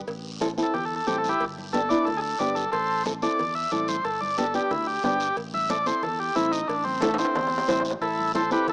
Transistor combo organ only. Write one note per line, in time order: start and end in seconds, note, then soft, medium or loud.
0.63 0.74 A4 medium
0.74 0.85 G4 medium
0.85 0.95 A4 medium
0.96 1.07 A4 medium
1.07 1.18 G4 medium
1.18 1.29 A4 medium
1.29 1.44 E4 medium
1.29 1.45 G4 medium
1.73 1.89 A4 loud
1.89 2.06 D5 medium
2.05 2.21 A4 medium
2.17 2.20 G#4 medium
2.22 2.39 A4 medium
2.39 2.55 D5 medium
2.55 2.70 A4 medium
2.72 3.03 A4 medium
2.72 3.05 C5 medium
3.23 3.55 D5 loud
3.55 3.71 E5 medium
3.72 3.88 D5 medium
3.89 4.05 C5 medium
4.04 4.21 A4 medium
4.21 4.37 D5 medium
4.38 4.54 A4 loud
4.56 4.71 G4 medium
4.71 4.87 E4 medium
4.87 5.03 G4 medium
5.04 5.36 G4 loud
5.54 5.70 E5 loud
5.71 5.86 D5 medium
5.87 6.03 C5 loud
6.03 6.19 A4 medium
6.19 6.36 G4 medium
6.35 6.52 E4 loud
6.52 6.68 D#4 medium
6.68 6.84 D4 medium
6.84 7.01 C4 medium
7.01 7.17 A3 loud
7.19 7.83 C4 loud
8.02 8.32 E4 medium
8.02 8.32 A4 medium
8.35 8.51 A4 medium
8.35 8.50 C5 medium
8.52 8.67 G4 medium
8.52 8.67 B4 medium
8.69 8.73 E4 medium
8.69 8.73 A4 medium